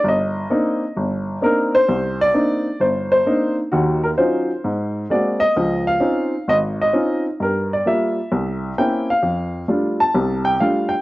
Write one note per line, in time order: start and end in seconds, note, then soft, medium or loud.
0.04 0.44 G1 medium
0.08 0.94 D#5 medium
0.50 0.82 A#3 medium
0.50 0.83 C4 medium
0.50 0.83 D4 soft
0.50 0.83 D#4 medium
0.97 1.36 G1 medium
1.42 1.74 A#3 soft
1.42 1.74 C4 medium
1.42 1.74 D4 soft
1.42 1.75 D#4 medium
1.42 1.72 A#4 medium
1.75 2.21 C5 loud
1.89 2.28 C2 medium
2.21 2.83 D5 loud
2.34 2.66 A#3 soft
2.34 2.66 C4 soft
2.34 2.66 D4 soft
2.34 2.66 D#4 medium
2.80 3.20 G1 medium
2.80 3.10 C5 medium
3.12 3.54 C5 medium
3.26 3.58 A#3 medium
3.26 3.58 C4 soft
3.26 3.59 D4 soft
3.26 3.59 D#4 medium
3.72 4.12 D#2 medium
3.72 4.12 D#3 medium
3.72 4.00 F#4 medium
4.03 4.08 A#4 medium
4.18 4.50 F#3 medium
4.18 4.50 C#4 soft
4.18 4.50 D#4 medium
4.18 4.50 F4 medium
4.18 5.12 C5 medium
4.64 5.04 G#2 medium
5.10 5.42 G#3 soft
5.10 5.42 A#3 soft
5.10 5.42 C4 soft
5.10 5.43 F#4 medium
5.10 5.39 D5 medium
5.40 5.83 D#5 loud
5.56 5.96 C#2 medium
5.56 5.96 F3 medium
5.87 6.50 F5 medium
6.00 6.33 C4 medium
6.00 6.33 C#4 medium
6.00 6.33 D#4 medium
6.00 6.34 F4 medium
6.48 6.88 G#1 medium
6.48 6.56 D#5 loud
6.81 7.23 D#5 medium
6.93 7.25 C4 medium
6.93 7.26 C#4 soft
6.93 7.26 D#4 medium
6.93 7.26 F4 medium
7.40 7.80 G2 medium
7.40 7.72 A#4 medium
7.73 7.88 D5 medium
7.86 8.18 G3 medium
7.86 8.18 A#3 medium
7.86 8.18 F4 medium
7.86 8.81 E5 medium
8.32 8.72 C2 medium
8.78 9.10 A#3 medium
8.78 9.10 C4 soft
8.78 9.10 C#4 soft
8.78 9.10 E4 medium
8.78 9.09 G5 medium
9.10 9.67 F5 medium
9.23 9.63 F2 medium
9.68 10.01 G3 medium
9.68 10.01 A3 soft
9.68 10.01 D4 soft
9.68 10.01 F4 medium
10.00 10.43 A5 medium
10.15 10.55 C2 medium
10.15 10.55 C3 medium
10.45 10.61 G5 medium
10.60 10.93 G3 soft
10.60 10.94 A3 soft
10.60 10.94 D4 soft
10.60 10.94 F4 medium
10.60 10.92 F5 medium
10.89 11.02 G5 medium